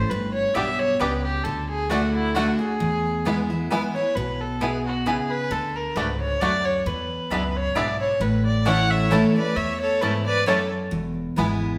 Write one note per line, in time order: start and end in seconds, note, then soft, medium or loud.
0.00 0.11 C5 loud
0.09 0.45 G1 medium
0.09 0.97 G2 loud
0.09 0.33 B4 medium
0.34 0.56 C#5 loud
0.54 0.94 B1 medium
0.54 0.98 B2 medium
0.54 0.65 B3 medium
0.54 0.67 B3 medium
0.54 0.67 D4 medium
0.54 0.65 G4 medium
0.54 0.67 G4 medium
0.54 0.65 D5 medium
0.54 0.81 E5 loud
0.54 0.65 G5 medium
0.79 1.01 C#5 loud
0.99 1.39 C#2 medium
0.99 1.43 C#3 medium
0.99 1.10 B3 medium
0.99 1.11 B3 medium
0.99 1.11 D4 medium
0.99 1.10 G4 medium
0.99 1.12 G4 medium
0.99 1.23 B4 loud
0.99 1.10 D5 medium
0.99 1.10 G5 loud
1.24 1.45 G4 medium
1.44 2.47 D2 loud
1.44 1.88 D3 medium
1.44 1.68 A4 medium
1.69 1.91 G#4 medium
1.90 2.33 D3 medium
1.90 2.00 A3 medium
1.90 2.01 A3 medium
1.90 2.34 A3 medium
1.90 2.01 D4 medium
1.90 2.34 D4 medium
1.90 2.14 F#4 medium
1.90 2.00 F#4 medium
1.90 2.02 F#4 medium
1.90 2.34 F#4 loud
1.90 2.00 D5 medium
1.90 2.00 F#5 medium
2.14 2.36 E4 loud
2.34 2.59 D3 medium
2.34 2.45 A3 loud
2.34 2.59 A3 medium
2.34 2.47 A3 medium
2.34 2.59 D4 medium
2.34 2.47 D4 medium
2.34 2.58 F#4 medium
2.34 2.46 F#4 medium
2.34 2.58 F#4 loud
2.34 2.47 F#4 medium
2.34 2.46 D5 medium
2.34 2.46 F#5 loud
2.59 2.80 D4 soft
2.59 2.79 F#4 medium
2.59 3.66 G#4 medium
2.80 3.66 E2 medium
2.80 3.83 E2 medium
3.25 3.49 E3 medium
3.25 3.49 G#3 medium
3.25 3.35 B3 medium
3.25 3.37 B3 medium
3.25 3.50 B3 medium
3.25 3.35 E4 medium
3.25 3.29 E4 medium
3.25 3.49 E4 medium
3.25 3.36 B4 loud
3.25 3.36 G#5 medium
3.50 3.71 B3 soft
3.50 3.70 E4 medium
3.70 3.95 E3 medium
3.70 3.95 G#3 medium
3.70 3.80 B3 medium
3.70 3.82 B3 medium
3.70 3.95 B3 medium
3.70 3.80 E4 medium
3.70 3.74 E4 medium
3.70 3.95 E4 medium
3.70 3.81 B4 medium
3.70 3.81 G#5 loud
3.95 4.16 B3 soft
3.95 4.15 E4 medium
3.95 4.17 C#5 loud
4.15 5.18 B1 medium
4.15 4.60 B2 medium
4.15 4.42 B4 medium
4.41 4.62 A4 medium
4.61 5.04 B2 medium
4.61 4.71 B3 medium
4.61 4.72 B3 medium
4.61 4.71 E4 medium
4.61 4.65 E4 medium
4.61 4.85 G#4 medium
4.61 4.71 B4 medium
4.61 4.71 G#5 medium
4.86 5.08 F#4 medium
5.06 5.49 C#3 medium
5.06 5.16 B3 medium
5.06 5.17 B3 medium
5.06 5.16 E4 medium
5.06 5.09 E4 medium
5.06 5.32 G#4 medium
5.06 5.16 B4 loud
5.06 5.16 G#5 loud
5.30 5.53 B4 loud
5.50 5.85 D2 medium
5.50 6.37 D3 medium
5.50 5.77 A4 medium
5.75 5.97 A#4 medium
5.95 6.34 C#2 medium
5.95 6.39 G#2 medium
5.95 6.06 A3 medium
5.95 6.07 A3 medium
5.95 6.08 D4 medium
5.95 6.06 F#4 medium
5.95 6.07 F#4 medium
5.95 6.20 B4 medium
5.95 6.06 D5 medium
5.95 6.06 F#5 medium
6.20 6.42 C#5 loud
6.40 6.79 D2 medium
6.40 6.84 F#2 medium
6.40 6.51 A3 medium
6.40 6.52 A3 medium
6.40 6.52 D4 medium
6.40 6.51 F#4 medium
6.40 6.52 F#4 medium
6.40 6.66 D5 loud
6.40 6.51 D5 medium
6.40 6.52 F#5 loud
6.65 6.88 C#5 loud
6.86 7.20 E2 loud
6.86 7.31 E2 medium
6.86 7.58 B4 medium
7.30 7.69 C#2 medium
7.30 7.74 F#2 medium
7.30 7.43 B3 medium
7.30 7.41 D4 medium
7.30 7.43 D4 medium
7.30 7.43 E4 medium
7.30 7.41 G#4 medium
7.30 7.41 E5 medium
7.30 7.41 B5 loud
7.56 7.78 C#5 loud
7.75 8.14 B1 medium
7.75 8.19 G#2 medium
7.75 7.87 B3 medium
7.75 7.86 D4 medium
7.75 7.87 D4 medium
7.75 7.88 E4 medium
7.75 7.86 G#4 medium
7.75 7.99 D5 loud
7.75 7.86 E5 loud
7.75 7.86 B5 medium
8.00 8.23 C#5 loud
8.20 9.23 A1 loud
8.20 9.07 A2 medium
8.20 8.45 B4 medium
8.46 8.68 D5 loud
8.65 9.09 E3 medium
8.65 8.76 A3 medium
8.65 9.10 A3 medium
8.65 8.77 A3 medium
8.65 9.10 C#4 medium
8.65 8.78 C#4 medium
8.65 8.76 E4 medium
8.65 8.78 E4 medium
8.65 9.10 E4 medium
8.65 8.76 C#5 medium
8.65 8.90 C#5 medium
8.65 8.92 F#5 loud
8.65 8.76 A5 loud
8.90 9.12 C#5 medium
8.90 9.12 E5 loud
9.10 9.35 E3 medium
9.10 9.21 A3 medium
9.10 9.23 A3 medium
9.10 9.35 A3 medium
9.10 9.36 C#4 medium
9.10 9.23 C#4 medium
9.10 9.21 E4 loud
9.10 9.23 E4 medium
9.10 9.35 E4 medium
9.10 9.36 A4 medium
9.10 9.35 C#5 medium
9.10 9.21 C#5 medium
9.10 9.21 A5 loud
9.35 9.57 C#4 soft
9.35 9.56 E4 medium
9.35 9.58 B4 medium
9.35 9.57 D5 medium
9.56 10.02 E2 medium
9.56 10.59 E2 medium
9.56 9.81 C#5 medium
9.56 9.79 E5 medium
9.80 10.03 A4 medium
9.80 10.03 C#5 loud
10.01 10.45 G#2 medium
10.01 10.11 A3 medium
10.01 10.13 A3 medium
10.01 10.13 C#4 medium
10.01 10.12 E4 medium
10.01 10.26 E4 medium
10.01 10.13 E4 medium
10.01 10.26 B4 medium
10.01 10.12 C#5 medium
10.01 10.12 A5 medium
10.26 10.46 B4 loud
10.26 10.46 D5 loud
10.46 10.90 F#2 medium
10.46 10.57 A3 loud
10.46 10.58 A3 medium
10.46 10.59 C#4 medium
10.46 10.57 E4 medium
10.46 10.59 E4 medium
10.46 10.70 A4 medium
10.46 10.62 C#5 medium
10.46 10.57 C#5 medium
10.46 10.57 A5 loud
10.91 11.26 E1 medium
10.91 11.78 E2 medium
11.36 11.76 G#1 medium
11.36 11.78 E3 medium
11.36 11.78 G#3 loud
11.36 11.47 B3 medium
11.36 11.78 B3 loud
11.36 11.49 B3 medium
11.36 11.47 E4 medium
11.36 11.78 E4 medium
11.36 11.41 E4 medium
11.36 11.47 B4 medium
11.36 11.48 G#5 medium